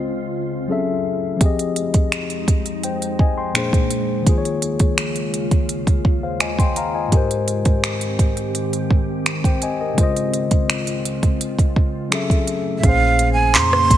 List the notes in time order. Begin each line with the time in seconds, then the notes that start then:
Already playing: C#2 C#3 G#3 C4 F4 C5 D#5
0.68 F#3 C#4 G#4 A4
0.72 E5
1.37 F3 C4
1.41 F2 F3 G#3 D#4 G4 G#4, kick, closed hi-hat
1.46 D#5
1.59 closed hi-hat
1.76 closed hi-hat
1.94 kick, closed hi-hat
2.12 finger snap, closed hi-hat
2.30 closed hi-hat
2.48 kick, closed hi-hat
2.66 closed hi-hat
2.83 C5 G5, closed hi-hat
3.02 closed hi-hat
3.19 D#5 G#5, kick
3.38 G5 C6
3.53 A#2 A#3 D4 G#4, finger snap, closed hi-hat
3.58 C5
3.73 kick, closed hi-hat
3.91 closed hi-hat
4.22 D#3 A#3
4.27 D#2 C#3 F4 G#4, kick, closed hi-hat
4.31 C5
4.38 C#5
4.45 closed hi-hat
4.62 closed hi-hat
4.79 kick, closed hi-hat
4.98 finger snap, closed hi-hat
5.16 closed hi-hat
5.34 closed hi-hat
5.51 kick, closed hi-hat
5.69 closed hi-hat
5.87 kick, closed hi-hat
6.05 kick
6.23 C5 F5
6.40 D#5 G#5, finger snap, closed hi-hat
6.59 G5 C6, kick, closed hi-hat
6.76 F5 A#5, closed hi-hat
6.95 D#5 G#5
7.08 G#2 G#3
7.12 G#2 D#3 C4 G4 A#4, kick, closed hi-hat
7.17 C5
7.31 closed hi-hat
7.48 closed hi-hat
7.65 kick, closed hi-hat
7.84 finger snap, closed hi-hat
8.01 closed hi-hat
8.19 kick, closed hi-hat
8.37 closed hi-hat
8.55 closed hi-hat
8.73 closed hi-hat
8.91 kick
9.26 finger snap, closed hi-hat
9.44 C5 G5, kick, closed hi-hat
9.62 D#5 G#5, closed hi-hat
9.81 A#4 D#5
9.94 C#2 C#3 G#3 F4, kick, closed hi-hat
9.98 F4 C5
10.03 D#5
10.16 closed hi-hat
10.34 closed hi-hat
10.51 kick, closed hi-hat
10.70 finger snap, closed hi-hat
10.87 closed hi-hat
11.05 closed hi-hat
11.23 kick, closed hi-hat
11.41 closed hi-hat
11.59 kick, closed hi-hat
11.76 kick
12.10 F#3 C#4 G#4 A4, finger snap, closed hi-hat
12.15 E5
12.30 kick, closed hi-hat
12.47 closed hi-hat
12.78 A#2 A#3 E5
12.83 A#1 C#3 F3 A#3 C#4 G#4 F5, kick, closed hi-hat
12.89 C5
13.19 closed hi-hat
13.33 G#5
13.55 F2 A#5 C6, clap, closed hi-hat
13.73 cross-stick
13.90 G#1 C6, kick, closed hi-hat